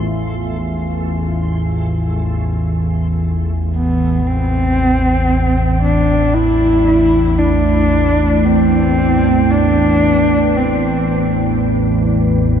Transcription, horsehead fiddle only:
3.75 B3
4.27 C4
5.83 D4
6.34 E4
7.39 D4
8.45 C4
9.51 D4
10.57 C4

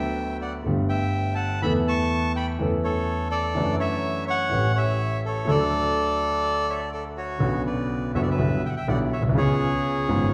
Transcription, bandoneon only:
Already playing: E5 G5
0.41 D5 F#5
0.89 E5 G5
1.35 F#5 A5
1.62 E5 B5
1.88 A5 C#6
2.36 G5 B5
2.84 A4 C#5
3.30 A4 D5
3.79 C#5 E5
4.27 C#5 F#5
4.76 C#5 E5
5.25 A4 C#5
5.48 A4 D5
6.70 C#5 E5
6.93 A4 D5
7.17 F#4 C#5
7.66 B4 D5
8.15 C#5 E5
8.23 D5
8.31 B4 E5
8.65 E5 F#5 G5
8.77 E5 G5
8.88 D5 F#5
9.12 C#5 E5
9.37 G#4 C#5

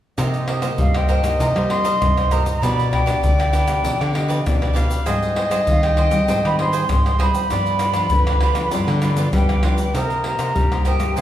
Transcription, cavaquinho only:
0.18 D#4 A#4 C5 D#5
0.48 D#4 A#4 C5 D#5
0.62 D#4 A#4 C5 D#5
0.94 A#4 C5 D#5
1.08 D#4 A#4 C5 D#5
1.40 D#4 A#4 C5 D#5
1.56 A#4 C5 D#5
1.70 D#4 A#4 C5 D#5
1.85 D#4 A#4 C5 D#5
2.17 A#4 C5 D#5
2.31 D#4 A#4 C5 D#5
2.47 A#4 C5 D#5
2.62 D4 G4 B4 D5
2.91 D4 G4 B4 D5
3.06 D4 G4 B4 D5
3.39 G4 B4 D5
3.53 D4 G4 B4 D5
3.84 D4 G4 B4 D5
4.00 G4 B4 D5
4.13 D4 G4 B4 D5
4.28 D4 G4 B4 D5
4.61 G4 B4 D5
4.73 D4 G4 B4 D5
4.88 G4 B4 D5
5.06 G#4 C5 D#5 G5
5.35 G#4 C5 D#5 G5
5.51 G#4 C5 D#5 G5
5.84 C5 D#5 G5
5.97 G#4 C5 D#5 G5
6.28 G#4 C5 D#5 G5
6.44 C5 D#5 G5
6.59 G#4 C5 D#5 G5
6.73 G#4 C5 D#5 G5
7.05 C5 D#5 G5
7.19 G#4 C5 D#5 G5
7.34 C5 D#5 G5
7.51 F4 G4 B4 D5
7.81 F4 G4 B4 D5
7.96 F4 G4 B4 D5
8.28 G4 B4 D5
8.42 F4 G4 B4 D5
8.73 F4 G4 B4 D5
8.89 G4 B4 D5
9.03 F4 G4 B4 D5
9.18 F4 G4 B4 D5
9.50 G4 B4 D5
9.63 F4 G4 B4 D5
9.79 G4 B4 D5
9.94 D#4 A#4 C5 D#5
10.25 D#4 A#4 C5 D#5
10.39 D#4 A#4 C5 D#5
10.72 A#4 C5 D#5
10.85 D#4 A#4 C5 D#5
11.16 G4 C5 D#5 G#5

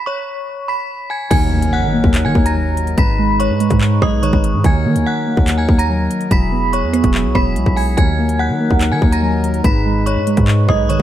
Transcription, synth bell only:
0.06 C#5 C#6
0.68 B5 B6
1.10 G#5 G#6
1.31 G#5 G#6
1.73 F#5 F#6
2.25 G#5 G#6
2.46 A#5 A#6
2.98 B5 B6
3.40 C#5 C#6
4.02 D#5 D#6
4.23 C#5 C#6
4.65 G#5 G#6
5.06 F#5 F#6
5.58 G#5 G#6
5.79 A#5 A#6
6.31 B5 B6
6.73 C#5 C#6
7.35 B5 B6
7.77 G#5 G#6
7.97 G#5 G#6
8.39 F#5 F#6
8.92 G#5 G#6
9.12 A#5 A#6
9.64 B5 B6
10.06 C#5 C#6
10.69 D#5 D#6
10.89 C#5 C#6

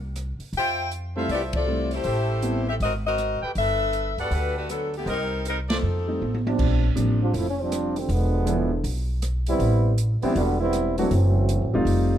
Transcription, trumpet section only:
1.15 F4 A4 C5 E5
2.04 G4 A4 C5 E5
3.42 G4 A4 B4 G5
4.19 G4 A4 B4 F#5
5.06 G4 A#4 C5 D#5
5.68 F4 A4 C5 D5

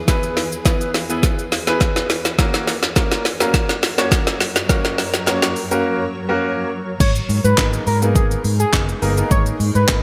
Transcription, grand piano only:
0.08 B3 E4 G#4 B4
0.65 B3 E4 G#4 B4
1.10 B3 E4 G#4 B4
1.67 B3 E4 G#4 B4
2.39 A#3 C#4 F#4 A#4
2.96 A#3 C#4 F#4 A#4
3.40 A#3 C#4 F#4 A#4
3.98 A#3 C#4 F#4 C#5
4.69 A#3 C#4 F#4 A#4
5.27 A#3 C#4 F#4 C#5
5.71 A#3 C#4 F#4 A#4
6.29 A#3 C#4 F#4 A#4
7.58 A#3 B3 D#4 G#4 A#4
8.02 A#3 B3 D#4 G#4 A#4
8.73 A#3 B3 D#4 G#4 A#4
9.02 A#3 B3 D#4 G#4 A#4
9.17 A#3 B3 D#4 G#4 A#4
9.89 A#3 B3 D#4 G#4 A#4

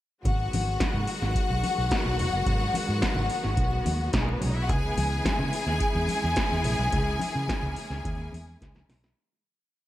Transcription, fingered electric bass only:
0.25 G#1
0.53 G#1
0.81 muted fingered electric bass stroke
0.94 G#2
1.22 G#1
1.50 B1
1.78 B1
2.06 B1
2.20 E1
2.33 F#1
2.46 G#1
2.89 G#2
3.17 G#1
3.45 G#1
3.57 B1
3.86 D#2
4.13 B1
4.41 B1
4.69 C#2
4.97 C#2
5.25 muted fingered electric bass stroke
5.39 C#3
5.67 D#2
5.95 E2
6.24 E2
6.52 E2
6.65 A#1
6.79 B1
6.93 C#2
7.35 C#3
7.63 C#2
7.90 C#2
8.05 D#2
8.33 E2
8.61 C#2
8.89 B1

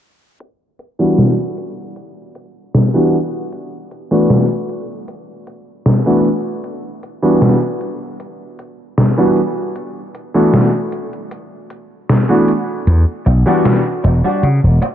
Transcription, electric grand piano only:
0.99 E3 G3 B3 D4 F#4
2.94 E3 G3 B3 D4 F#4
4.11 E3 A3 B3 D4 F#4
6.06 E3 A3 B3 D4 F#4
7.22 E3 G3 B3 D4 F#4
9.17 E3 G3 B3 D4 F#4
10.34 E3 A3 B3 D4 F#4
12.29 E3 A3 B3 D4 F#4
13.46 E3 G3 B3 D4 F#4

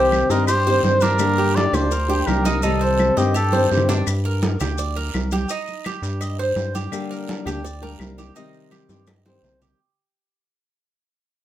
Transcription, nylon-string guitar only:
Already playing: C3 D#3 G3 C4 G4
0.30 D#3 G3 C4 G4
0.48 muted nylon-string guitar stroke
0.67 D#3 G3 C4 G4
0.84 D#3 G3 C4 G4
1.18 D3 G3 A#3 D4 G4
1.73 G3 A#3 D4 G4
1.91 muted nylon-string guitar stroke
2.08 G3 A#3 D4 G4
2.27 G3 A#3 D4 G4
2.64 C3 D#3 G3 C4 G4
3.16 D#3 G3 C4 G4
3.35 muted nylon-string guitar stroke
3.53 D#3 G3 C4 G4
3.70 D#3 G3 C4 G4
6.91 D3 G3 A#3 D4 G4
7.45 G3 A#3 D4 G4
7.64 muted nylon-string guitar stroke
7.82 G3 A#3 D4 G4
8.00 G3 A#3 D4 G4
8.36 C3 D#3 G3 C4 G4
8.89 D#3 G3 C4 G4
9.08 muted nylon-string guitar stroke
9.26 D#3 G3 C4 G4
9.43 D#3 G3 C4 G4

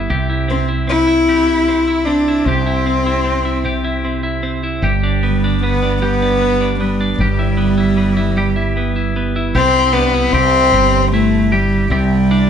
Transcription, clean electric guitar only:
Already playing: G3 B3 E4
0.10 C3 G4
0.30 E4
0.48 C4
0.69 E4
0.88 C4
1.07 E4
1.28 C3 G4
1.48 E4
1.68 C4
1.88 E4
2.07 C4
2.28 E4
2.47 C3 G4
2.66 E4
2.86 C4
3.06 E4
3.24 C4
3.45 E4
3.65 C3 G4
3.84 E4
4.04 C4
4.23 E4
4.43 C4
4.63 E4
4.83 G3 G4
5.03 D4
5.23 B3
5.44 D4
5.63 B3
5.82 D4
6.02 G3 G4
6.22 D4
6.42 B3
6.61 D4
6.81 B3
7.01 D4
7.20 G3 G4
7.39 E4
7.57 B3
7.78 E4
7.97 B3
8.17 E4
8.37 G3 G4
8.56 E4
8.77 B3
8.96 E4
9.16 B3
9.36 E4
9.55 C3 G4
9.95 D4
10.14 E4
10.34 G4
10.73 G3
11.14 E4
11.52 G4
11.91 C3 G4
12.31 D4

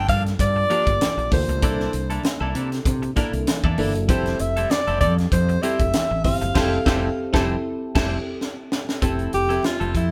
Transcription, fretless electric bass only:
0.09 G2
0.39 G2
0.87 G1
1.17 A#1
1.32 D2
1.48 C#2
1.63 C2
1.94 C2
2.41 C2
2.55 C3
2.86 C3
3.33 C2
3.64 E2
3.78 G1
3.95 F#1
4.09 F1
4.40 F1
4.87 F1
5.01 F2
5.32 F2
5.80 F1
6.11 A1
6.25 G1
6.42 F#1
6.55 F1
6.86 F1
7.34 F1
7.95 F1
9.02 F1
9.34 F1
9.81 F1
9.95 F2

